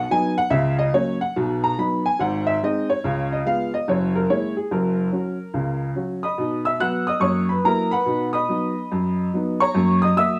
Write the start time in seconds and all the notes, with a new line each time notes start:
0.11 F#3 B3 D#4 G#5
0.38 F#5
0.50 C#2 C#3 E5
0.79 D#5
0.93 F#3 A#3 C#4 C#5
1.21 F#5
1.36 B1 B2
1.64 A#5
1.78 F#3 B3 D#4 B5
2.06 G#5
2.19 G#1 G#2 F#5
2.47 E5
2.63 G#3 C4 D#4 D#5
2.90 C#5
3.04 C#2 C#3
3.32 D#5
3.46 G#3 B3 F4 F5
3.74 D#5
3.88 F#1 F#2 C#5
4.15 A#4
4.29 G#3 A#3 E4 C#5
4.57 G#4
4.71 F#1 F#2 A#4
5.12 F#3 C#4 F#4
5.54 C#2 C#3
5.96 F#3 C#4 F#4
6.23 D#5 B5 D#6
6.38 B2 D#4
6.65 E5 E6
6.80 F#3 B3 F#4 F#5 F#6
7.07 D#5 D#6
7.20 F#2 A#3 C#5 C#6
7.49 B4 B5
7.64 F#3 A#3 E4 A#4 A#5
7.91 B4 F#5 B5
8.06 B2 D#4
8.33 D#5 B5 D#6
8.49 F#3 B3 D#4
8.92 F#2
9.34 F#3 B3 D#4
9.60 C#5 A#5 C#6
9.74 F#2 A#3
10.02 D#5 D#6
10.17 F#3 A#3 F#4 E5 E6